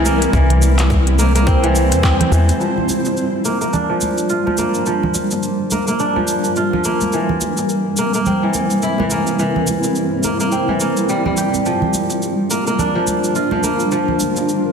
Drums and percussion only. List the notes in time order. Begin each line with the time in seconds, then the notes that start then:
0.06 high conga, cabasa
0.22 closed hi-hat, cabasa
0.33 kick, cabasa
0.50 closed hi-hat, low conga
0.62 high bongo, high conga, cabasa
0.79 clap, closed hi-hat, high bongo, cabasa
0.90 kick, cabasa
1.07 closed hi-hat
1.19 high conga, cabasa
1.36 closed hi-hat, cabasa
1.47 kick, cabasa
1.63 closed hi-hat, high conga
1.76 cabasa
1.92 closed hi-hat, cabasa
2.03 kick, clap, cabasa
2.21 closed hi-hat, low conga
2.33 cabasa
2.49 closed hi-hat, high conga, cabasa
2.61 cabasa
2.78 low conga
2.89 high bongo, high conga, cabasa
3.05 high bongo, cabasa
3.17 cabasa
3.45 cabasa
3.61 cabasa
3.73 low conga, cabasa
4.01 high conga, cabasa
4.18 cabasa
4.30 cabasa
4.47 high bongo, high conga
4.58 high conga, cabasa
4.74 cabasa
4.86 cabasa
5.03 low conga
5.14 high bongo, high conga, cabasa
5.31 high bongo, cabasa
5.43 cabasa
5.71 high conga, cabasa
5.88 cabasa
5.99 cabasa
6.16 high conga
6.28 cabasa
6.44 cabasa
6.56 cabasa
6.73 low conga
6.84 cabasa
7.01 high conga, cabasa
7.12 cabasa
7.29 low conga
7.41 high bongo, high conga, cabasa
7.57 high bongo, cabasa
7.69 cabasa
7.97 cabasa
8.14 cabasa
8.26 low conga, cabasa
8.54 high conga, cabasa
8.70 cabasa
8.82 cabasa
8.98 high bongo, high conga
9.11 high conga, cabasa
9.27 cabasa
9.39 cabasa
9.56 low conga
9.67 high bongo, high conga, cabasa
9.84 high bongo, cabasa
9.95 cabasa
10.23 high conga, cabasa
10.40 cabasa
10.52 cabasa
10.68 high conga
10.80 cabasa
10.97 cabasa
11.09 cabasa
11.26 low conga
11.37 cabasa
11.54 high conga, cabasa
11.66 cabasa
11.82 low conga
11.94 high bongo, high conga, cabasa
12.10 high bongo, cabasa
12.22 cabasa
12.51 cabasa
12.67 cabasa
12.79 low conga, cabasa
13.07 high conga, cabasa
13.24 cabasa
13.35 cabasa
13.51 high bongo, high conga
13.63 high conga, cabasa
13.80 cabasa
13.92 cabasa
14.08 low conga
14.20 high bongo, high conga, cabasa
14.37 high bongo, cabasa
14.49 cabasa